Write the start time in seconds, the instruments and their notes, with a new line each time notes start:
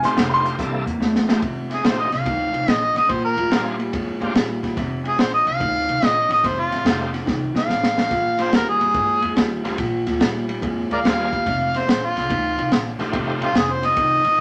0.03 upright bass A1, clean electric guitar F2 C3, tonewheel organ A3 C4 D#4 F4 G4, upright piano C6, snare, closed hi-hat
0.17 upright bass F1, clean electric guitar F2 D3, snare, closed hi-hat
0.30 upright piano B5
0.34 upright piano C6
0.45 clean electric guitar F2 D3, closed hi-hat
0.58 upright bass C2, clean electric guitar C3 G3, tonewheel organ A#3 C4 D4 E4 A4, kick, closed hi-hat
0.86 upright bass E2, clean electric guitar C3 A#3, closed hi-hat
1.00 upright bass E2, clean electric guitar C3 A3, snare
1.15 snare
1.28 clean electric guitar C3 A3, tonewheel organ A3 C4 D#4 F4 G4, snare
1.42 upright bass F1, clean electric guitar F2 C3, kick, ride
1.69 clean electric guitar F2 C3, harmonica G#4, snare, ride
1.82 upright bass A#1, clean electric guitar F2 D3, tonewheel organ A3 C4 D#4 F4 G4, harmonica C5, snare, ride
2.00 harmonica D#5
2.10 upright bass C2, clean electric guitar F2 D3, harmonica F5, snare, ride
2.25 upright bass D2, clean electric guitar F2 D#3, kick, ride
2.52 upright bass C2, clean electric guitar F2 D#3, ride
2.67 upright bass A#1, clean electric guitar F2 D3, harmonica D#5, snare, ride
2.95 upright bass A1, clean electric guitar F2 D3, harmonica D#5, snare, ride
3.09 upright bass A#1, clean electric guitar A#2 F3, harmonica C5, kick, ride
3.25 harmonica A#4
3.36 upright bass D2, clean electric guitar A#2 F3, ride
3.50 upright bass A#1, clean electric guitar A#2 G3, tonewheel organ A#3 C4 D4 F4 G#4, snare, ride
3.79 clean electric guitar A#2 G3, ride
3.93 upright bass F2, clean electric guitar A#2 G#3, kick, ride
4.20 upright bass D2, clean electric guitar A#2 G#3, tonewheel organ A#3 C4 D4 F4 G4, ride
4.34 upright bass A#1, clean electric guitar A#2 G3, snare, ride
4.63 clean electric guitar A#2 G3, kick, snare, ride
4.76 upright bass F1, clean electric guitar F2 C3, kick, snare, ride
5.04 clean electric guitar F2 C3, harmonica G#4, ride
5.18 upright bass A#1, clean electric guitar F2 D3, harmonica C5, snare, ride
5.34 harmonica D#5
5.46 upright bass C2, clean electric guitar F2 D3, harmonica F5, ride
5.60 upright bass D2, clean electric guitar F2 D#3, kick, ride
5.87 upright bass C2, clean electric guitar F2 D#3, ride
6.01 upright bass A#1, clean electric guitar F2 D3, snare, ride
6.06 harmonica D#5
6.29 upright bass A1, clean electric guitar F2 D3, harmonica D#5, snare, ride
6.43 upright bass F1, clean electric guitar F2 C3, harmonica C5, kick, snare, ride
6.60 harmonica F4
6.71 upright bass A1, clean electric guitar F2 C3, snare, ride
6.85 upright bass F1, clean electric guitar F2 D3, tonewheel organ A3 C4 D#4 F4 G4, snare, ride
7.13 clean electric guitar F2 D3, snare, ride
7.26 upright bass C2, clean electric guitar F2 D#3, kick, snare
7.54 upright bass A1, clean electric guitar F2 D#3, snare
7.58 harmonica F5
7.68 upright bass A1, clean electric guitar F2 D3, snare
7.83 snare
7.96 clean electric guitar F2 D3, snare
8.10 upright bass A#1, clean electric guitar A#2 F3, kick, snare, ride
8.38 clean electric guitar A#2 F3, tonewheel organ A#3 C4 D4 F4 G#4, snare, ride
8.43 harmonica C5
8.52 upright bass D#2, clean electric guitar A#2 G3, harmonica A#4, snare, ride
8.69 harmonica G#4
8.80 upright bass F2, clean electric guitar A#2 G3, ride
8.94 upright bass G2, clean electric guitar A#2 G#3, kick, ride
9.22 upright bass F2, clean electric guitar A#2 G#3, ride
9.36 upright bass D#2, clean electric guitar A#2 G3, snare, ride
9.64 upright bass D2, clean electric guitar A#2 G3, tonewheel organ A#3 C4 D4 F4 G#4, snare, ride
9.78 upright bass A#1, clean electric guitar A#2 F3, kick, snare, ride
10.06 upright bass D2, clean electric guitar A#2 F3, snare, ride
10.20 upright bass A#1, clean electric guitar A#2 G3, snare, ride
10.48 clean electric guitar A#2 G3, ride
10.62 upright bass F2, clean electric guitar A#2 G#3, kick, ride
10.90 upright bass D2, clean electric guitar A#2 G#3, harmonica A#4 D5 F5, ride
11.04 upright bass D#2, clean electric guitar A#2 G3, tonewheel organ A#3 C4 D4 F4 G#4, snare, ride
11.32 clean electric guitar A#2 G3, kick, ride
11.46 upright bass F1, clean electric guitar F2 C3, kick, ride
11.74 clean electric guitar F2 C3, harmonica C5, snare, ride
11.88 upright bass A#1, clean electric guitar F2 D3, harmonica C5, snare, ride
12.06 harmonica F4
12.15 upright bass C2, clean electric guitar F2 D3, snare, ride
12.29 upright bass D2, clean electric guitar F2 D#3, kick, ride
12.57 upright bass C2, clean electric guitar F2 D#3, ride
12.71 upright bass A#1, clean electric guitar F2 D3, snare, ride
12.99 upright bass A1, clean electric guitar F2 D3, tonewheel organ A3 C4 D#4 F4 G4, snare, ride
13.13 upright bass F1, clean electric guitar F2 C3, kick, ride
13.40 upright bass A1, clean electric guitar F2 C3, ride
13.44 harmonica F4
13.54 upright bass F1, clean electric guitar F2 D3, snare, ride
13.58 harmonica G#4
13.73 harmonica C5
13.82 clean electric guitar F2 D3, harmonica D#5, snare, ride
13.96 upright bass C2, clean electric guitar F2 D#3, kick, ride
14.24 upright bass A1, clean electric guitar F2 D#3, ride
14.37 clean electric guitar F2